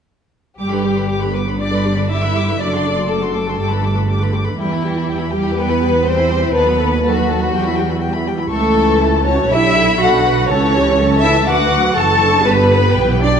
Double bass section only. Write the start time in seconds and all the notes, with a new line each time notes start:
0.60 G1
2.60 F#1
3.59 G1
4.58 E2
6.54 D#2
7.53 E2
8.52 C#2
9.50 B1
10.50 C#2
11.48 D2
11.96 F#1
12.47 G1
12.97 B1